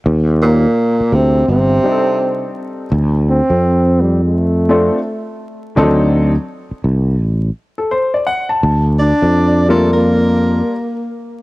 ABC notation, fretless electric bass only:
X:1
M:4/4
L:1/16
Q:"Swing 16ths" 1/4=84
K:Dphr
V:1 name="Fretless electric bass" clef=bass
E,,4 z2 D,,2 G,,,2 z6 | D,,3 F,,8 z4 z | D,,4 z2 C,,2 A,,,2 z6 | D,,3 F,,8 z4 z |]